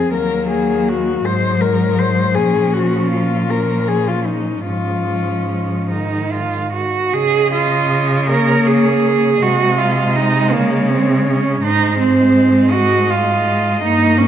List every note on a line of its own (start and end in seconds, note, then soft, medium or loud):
0.00 0.14 C4 medium
0.00 0.13 G#4 medium
0.13 1.22 D#2 medium
0.13 1.22 F#3 medium
0.13 1.27 A#3 medium
0.13 0.50 A#4 medium
0.50 0.90 G#4 medium
0.88 1.27 F#4 medium
1.24 2.37 G#2 medium
1.24 2.37 F#3 medium
1.24 2.35 G#3 medium
1.24 1.63 C5 medium
1.61 2.00 A#4 medium
1.98 2.36 C5 medium
2.35 4.64 A#2 medium
2.35 3.49 F3 medium
2.35 3.47 C#4 medium
2.35 2.74 G#4 medium
2.73 3.11 F#4 medium
3.11 3.51 F4 medium
3.49 4.64 F3 medium
3.49 4.64 C#4 medium
3.49 3.89 A#4 medium
3.88 4.09 G#4 medium
4.08 4.28 F4 medium
4.26 4.65 D#4 medium
4.65 6.86 G#2 medium
4.65 5.92 F3 medium
4.65 5.88 C#4 medium
4.65 5.88 F4 medium
5.90 6.91 D#3 medium
5.90 6.32 D#4 medium
6.31 6.72 F4 medium
6.72 7.15 F#4 medium
7.13 9.38 C#3 medium
7.13 7.52 G#4 loud
7.13 8.31 D#5 medium
7.52 8.27 F4 loud
8.28 9.44 A#3 loud
8.28 8.69 A#4 loud
8.28 9.42 C#5 medium
8.67 9.43 G#4 loud
9.42 10.54 C3 medium
9.42 11.63 G#3 medium
9.42 9.80 F#4 loud
9.42 10.55 D#5 medium
9.79 10.17 F4 medium
10.16 10.53 D#4 loud
10.52 11.63 C#3 medium
10.52 10.91 A#3 medium
10.52 11.65 C#5 medium
10.90 11.28 C4 medium
11.27 11.62 C#4 medium
11.63 13.78 G#2 medium
11.63 13.84 G#3 medium
11.63 11.98 D#4 loud
11.63 12.71 C5 medium
11.99 12.73 C4 medium
12.71 13.11 F#4 loud
12.71 14.28 D#5 medium
13.10 13.82 F4 medium
13.82 14.28 G2 medium
13.82 14.28 A#3 medium
13.82 14.19 D#4 loud
14.18 14.28 C#4 medium